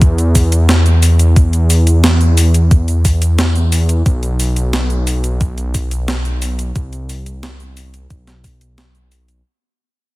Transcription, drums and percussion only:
0.02 kick, closed hi-hat, cabasa
0.18 closed hi-hat, cabasa
0.35 kick, open hi-hat, cabasa
0.52 closed hi-hat, cabasa
0.69 snare, closed hi-hat, cabasa
0.86 closed hi-hat, cabasa
1.03 open hi-hat, cabasa
1.19 closed hi-hat, cabasa
1.36 kick, closed hi-hat, cabasa
1.53 closed hi-hat, cabasa
1.70 open hi-hat, cabasa
1.87 closed hi-hat, cabasa
2.04 snare, closed hi-hat, cabasa
2.21 closed hi-hat, cabasa
2.37 open hi-hat, cabasa
2.54 closed hi-hat, cabasa
2.71 kick, closed hi-hat, cabasa
2.88 closed hi-hat, cabasa
3.05 kick, open hi-hat, cabasa
3.22 closed hi-hat, cabasa
3.39 snare, closed hi-hat, cabasa
3.55 closed hi-hat, cabasa
3.72 open hi-hat, cabasa
3.89 closed hi-hat, cabasa
4.06 kick, closed hi-hat, cabasa
4.23 closed hi-hat, cabasa
4.40 open hi-hat, cabasa
4.56 closed hi-hat, cabasa
4.73 snare, closed hi-hat, cabasa
4.90 closed hi-hat, cabasa
5.07 open hi-hat, cabasa
5.24 closed hi-hat, cabasa
5.41 kick, closed hi-hat, cabasa
5.58 closed hi-hat, cabasa
5.74 kick, open hi-hat, cabasa
5.91 closed hi-hat, cabasa
6.08 snare, closed hi-hat, cabasa
6.25 closed hi-hat, cabasa
6.42 open hi-hat, cabasa
6.59 closed hi-hat, cabasa
6.76 kick, closed hi-hat, cabasa
6.93 closed hi-hat, cabasa
7.09 open hi-hat, cabasa
7.26 closed hi-hat, cabasa
7.43 snare, closed hi-hat, cabasa
7.60 closed hi-hat, cabasa
7.77 open hi-hat, cabasa
7.94 closed hi-hat, cabasa
8.10 kick, closed hi-hat, cabasa
8.27 snare, closed hi-hat, cabasa
8.44 kick, open hi-hat, cabasa
8.61 closed hi-hat, cabasa
8.78 snare, closed hi-hat, cabasa
8.95 closed hi-hat, cabasa
9.12 open hi-hat, cabasa
9.28 closed hi-hat, cabasa

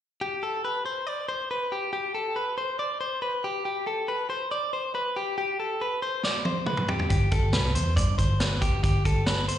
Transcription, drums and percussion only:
6.23 snare
6.45 high tom
6.66 mid tom
6.77 mid tom
6.88 floor tom
6.99 floor tom
7.10 kick, closed hi-hat
7.31 kick, closed hi-hat
7.53 snare, closed hi-hat
7.75 closed hi-hat
7.97 kick, closed hi-hat
8.19 kick, closed hi-hat
8.40 snare, closed hi-hat
8.62 kick, closed hi-hat
8.84 kick, closed hi-hat
9.05 kick, closed hi-hat
9.26 snare, closed hi-hat
9.48 closed hi-hat

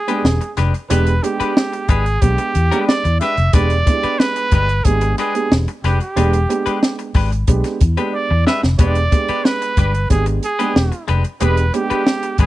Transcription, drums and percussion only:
0.08 closed hi-hat
0.25 snare
0.41 closed hi-hat
0.57 snare, closed hi-hat
0.74 closed hi-hat
0.90 closed hi-hat
1.07 closed hi-hat
1.24 closed hi-hat
1.40 closed hi-hat
1.57 snare
1.73 closed hi-hat
1.88 kick, closed hi-hat
2.06 closed hi-hat
2.22 kick, closed hi-hat
2.38 closed hi-hat
2.55 closed hi-hat
2.72 closed hi-hat
2.89 snare
3.05 closed hi-hat
3.21 snare, closed hi-hat
3.37 closed hi-hat
3.53 kick, closed hi-hat
3.70 closed hi-hat
3.87 kick, closed hi-hat
4.03 closed hi-hat
4.20 snare
4.36 closed hi-hat
4.51 kick, closed hi-hat
4.69 closed hi-hat
4.85 kick, closed hi-hat
5.01 closed hi-hat
5.18 closed hi-hat
5.35 closed hi-hat
5.52 snare
5.68 closed hi-hat
5.84 snare, closed hi-hat
6.00 closed hi-hat
6.17 closed hi-hat
6.33 closed hi-hat
6.50 closed hi-hat
6.66 closed hi-hat
6.83 snare
6.99 closed hi-hat
7.14 kick, open hi-hat
7.32 closed hi-hat
7.47 kick, closed hi-hat
7.64 snare, closed hi-hat
7.81 kick, closed hi-hat
7.97 closed hi-hat
8.47 snare
8.63 snare
8.79 kick, closed hi-hat
8.95 closed hi-hat
9.12 kick, closed hi-hat
9.28 closed hi-hat
9.45 snare
9.62 closed hi-hat
9.77 kick, closed hi-hat
9.94 closed hi-hat
10.10 kick, closed hi-hat
10.26 closed hi-hat
10.43 closed hi-hat
10.60 closed hi-hat
10.76 snare
10.92 closed hi-hat
11.08 closed hi-hat
11.24 closed hi-hat
11.40 closed hi-hat
11.57 closed hi-hat
11.74 closed hi-hat
11.90 closed hi-hat
12.07 snare
12.23 closed hi-hat
12.38 kick, closed hi-hat

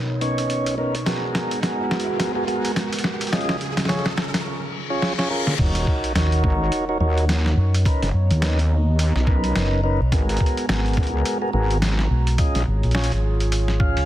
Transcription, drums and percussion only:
0.21 closed hi-hat
0.38 closed hi-hat
0.50 closed hi-hat
0.66 closed hi-hat
0.95 closed hi-hat
1.06 snare, closed hi-hat
1.35 snare, closed hi-hat
1.51 closed hi-hat
1.63 snare, closed hi-hat
1.91 snare
2.00 closed hi-hat
2.20 snare, closed hi-hat
2.48 closed hi-hat
2.65 closed hi-hat
2.76 snare, closed hi-hat
2.93 closed hi-hat
2.99 closed hi-hat
3.04 snare
3.21 closed hi-hat
3.27 closed hi-hat
3.33 snare, closed hi-hat
3.41 closed hi-hat
3.49 snare
3.61 closed hi-hat
3.77 snare, closed hi-hat
3.80 snare
3.85 snare
3.89 snare, closed hi-hat
3.95 snare
3.99 snare
4.06 snare
4.18 snare
4.34 snare, closed hi-hat
5.02 snare
5.19 snare
5.47 snare
5.59 kick, closed hi-hat, crash
5.75 closed hi-hat
5.87 kick
6.04 closed hi-hat
6.16 snare, closed hi-hat
6.32 closed hi-hat
6.44 kick
6.72 closed hi-hat
7.18 closed hi-hat
7.29 snare, closed hi-hat
7.46 snare
7.74 closed hi-hat
7.85 kick, closed hi-hat
8.03 snare, closed hi-hat
8.31 closed hi-hat
8.42 snare, closed hi-hat
8.59 closed hi-hat
8.99 closed hi-hat
9.16 snare
9.27 kick
9.44 closed hi-hat
9.56 snare, closed hi-hat
10.12 kick, closed hi-hat
10.29 closed hi-hat
10.37 kick, closed hi-hat
10.46 closed hi-hat
10.57 closed hi-hat
10.69 snare, closed hi-hat
10.86 closed hi-hat
10.88 closed hi-hat
10.93 kick, closed hi-hat
10.97 closed hi-hat
11.03 closed hi-hat
11.07 closed hi-hat
11.25 closed hi-hat
11.71 closed hi-hat
11.82 snare, closed hi-hat
11.99 snare
12.27 closed hi-hat
12.38 kick, closed hi-hat
12.55 snare, closed hi-hat
12.83 closed hi-hat
12.91 snare, closed hi-hat
13.01 closed hi-hat
13.04 closed hi-hat
13.12 closed hi-hat
13.40 closed hi-hat
13.52 closed hi-hat
13.68 snare
13.80 kick
13.97 closed hi-hat

